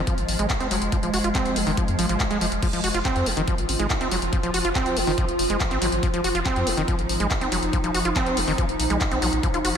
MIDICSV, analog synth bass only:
0, 0, Header, 1, 2, 480
1, 0, Start_track
1, 0, Tempo, 425532
1, 1041, Time_signature, 4, 2, 24, 8
1, 11022, End_track
2, 0, Start_track
2, 0, Title_t, "Analog synth bass"
2, 0, Program_c, 0, 38
2, 201, Note_on_c, 0, 32, 84
2, 279, Note_off_c, 0, 32, 0
2, 321, Note_on_c, 0, 32, 102
2, 399, Note_off_c, 0, 32, 0
2, 441, Note_on_c, 0, 32, 97
2, 519, Note_off_c, 0, 32, 0
2, 681, Note_on_c, 0, 29, 89
2, 759, Note_off_c, 0, 29, 0
2, 801, Note_on_c, 0, 29, 109
2, 879, Note_off_c, 0, 29, 0
2, 921, Note_on_c, 0, 29, 92
2, 999, Note_off_c, 0, 29, 0
2, 1161, Note_on_c, 0, 27, 91
2, 1239, Note_off_c, 0, 27, 0
2, 1281, Note_on_c, 0, 29, 105
2, 1359, Note_off_c, 0, 29, 0
2, 1401, Note_on_c, 0, 29, 84
2, 1479, Note_off_c, 0, 29, 0
2, 1641, Note_on_c, 0, 29, 89
2, 1719, Note_off_c, 0, 29, 0
2, 1761, Note_on_c, 0, 29, 96
2, 1839, Note_off_c, 0, 29, 0
2, 1881, Note_on_c, 0, 29, 92
2, 1959, Note_off_c, 0, 29, 0
2, 2122, Note_on_c, 0, 41, 82
2, 2199, Note_off_c, 0, 41, 0
2, 2242, Note_on_c, 0, 32, 97
2, 2320, Note_off_c, 0, 32, 0
2, 2361, Note_on_c, 0, 32, 94
2, 2439, Note_off_c, 0, 32, 0
2, 2601, Note_on_c, 0, 29, 87
2, 2679, Note_off_c, 0, 29, 0
2, 2721, Note_on_c, 0, 29, 102
2, 2799, Note_off_c, 0, 29, 0
2, 2842, Note_on_c, 0, 29, 90
2, 2919, Note_off_c, 0, 29, 0
2, 3081, Note_on_c, 0, 29, 90
2, 3159, Note_off_c, 0, 29, 0
2, 3201, Note_on_c, 0, 29, 101
2, 3279, Note_off_c, 0, 29, 0
2, 3321, Note_on_c, 0, 29, 86
2, 3399, Note_off_c, 0, 29, 0
2, 3561, Note_on_c, 0, 41, 85
2, 3639, Note_off_c, 0, 41, 0
2, 3681, Note_on_c, 0, 29, 95
2, 3759, Note_off_c, 0, 29, 0
2, 3801, Note_on_c, 0, 29, 93
2, 3879, Note_off_c, 0, 29, 0
2, 4041, Note_on_c, 0, 32, 85
2, 4119, Note_off_c, 0, 32, 0
2, 4161, Note_on_c, 0, 32, 107
2, 4239, Note_off_c, 0, 32, 0
2, 4281, Note_on_c, 0, 32, 94
2, 4359, Note_off_c, 0, 32, 0
2, 4521, Note_on_c, 0, 29, 95
2, 4599, Note_off_c, 0, 29, 0
2, 4641, Note_on_c, 0, 29, 107
2, 4719, Note_off_c, 0, 29, 0
2, 4761, Note_on_c, 0, 29, 91
2, 4839, Note_off_c, 0, 29, 0
2, 5001, Note_on_c, 0, 27, 86
2, 5079, Note_off_c, 0, 27, 0
2, 5122, Note_on_c, 0, 29, 104
2, 5199, Note_off_c, 0, 29, 0
2, 5242, Note_on_c, 0, 29, 89
2, 5320, Note_off_c, 0, 29, 0
2, 5482, Note_on_c, 0, 29, 88
2, 5560, Note_off_c, 0, 29, 0
2, 5602, Note_on_c, 0, 29, 100
2, 5679, Note_off_c, 0, 29, 0
2, 5722, Note_on_c, 0, 29, 94
2, 5800, Note_off_c, 0, 29, 0
2, 5962, Note_on_c, 0, 29, 86
2, 6040, Note_off_c, 0, 29, 0
2, 6082, Note_on_c, 0, 29, 106
2, 6159, Note_off_c, 0, 29, 0
2, 6201, Note_on_c, 0, 29, 99
2, 6279, Note_off_c, 0, 29, 0
2, 6442, Note_on_c, 0, 32, 94
2, 6520, Note_off_c, 0, 32, 0
2, 6561, Note_on_c, 0, 32, 107
2, 6639, Note_off_c, 0, 32, 0
2, 6681, Note_on_c, 0, 32, 91
2, 6759, Note_off_c, 0, 32, 0
2, 6922, Note_on_c, 0, 29, 90
2, 6999, Note_off_c, 0, 29, 0
2, 7041, Note_on_c, 0, 29, 104
2, 7119, Note_off_c, 0, 29, 0
2, 7161, Note_on_c, 0, 29, 87
2, 7239, Note_off_c, 0, 29, 0
2, 7401, Note_on_c, 0, 41, 84
2, 7479, Note_off_c, 0, 41, 0
2, 7521, Note_on_c, 0, 29, 97
2, 7599, Note_off_c, 0, 29, 0
2, 7641, Note_on_c, 0, 29, 92
2, 7719, Note_off_c, 0, 29, 0
2, 7881, Note_on_c, 0, 32, 87
2, 7959, Note_off_c, 0, 32, 0
2, 8001, Note_on_c, 0, 32, 101
2, 8079, Note_off_c, 0, 32, 0
2, 8121, Note_on_c, 0, 32, 95
2, 8199, Note_off_c, 0, 32, 0
2, 8361, Note_on_c, 0, 29, 91
2, 8439, Note_off_c, 0, 29, 0
2, 8481, Note_on_c, 0, 29, 103
2, 8559, Note_off_c, 0, 29, 0
2, 8602, Note_on_c, 0, 29, 88
2, 8679, Note_off_c, 0, 29, 0
2, 8841, Note_on_c, 0, 27, 86
2, 8919, Note_off_c, 0, 27, 0
2, 8961, Note_on_c, 0, 29, 101
2, 9039, Note_off_c, 0, 29, 0
2, 9081, Note_on_c, 0, 29, 92
2, 9159, Note_off_c, 0, 29, 0
2, 9321, Note_on_c, 0, 29, 86
2, 9399, Note_off_c, 0, 29, 0
2, 9441, Note_on_c, 0, 29, 103
2, 9519, Note_off_c, 0, 29, 0
2, 9561, Note_on_c, 0, 29, 91
2, 9639, Note_off_c, 0, 29, 0
2, 9802, Note_on_c, 0, 27, 85
2, 9879, Note_off_c, 0, 27, 0
2, 9922, Note_on_c, 0, 34, 105
2, 9999, Note_off_c, 0, 34, 0
2, 10042, Note_on_c, 0, 34, 96
2, 10119, Note_off_c, 0, 34, 0
2, 10281, Note_on_c, 0, 34, 88
2, 10359, Note_off_c, 0, 34, 0
2, 10401, Note_on_c, 0, 34, 104
2, 10479, Note_off_c, 0, 34, 0
2, 10521, Note_on_c, 0, 34, 89
2, 10599, Note_off_c, 0, 34, 0
2, 10761, Note_on_c, 0, 29, 86
2, 10839, Note_off_c, 0, 29, 0
2, 10881, Note_on_c, 0, 29, 99
2, 10959, Note_off_c, 0, 29, 0
2, 11022, End_track
0, 0, End_of_file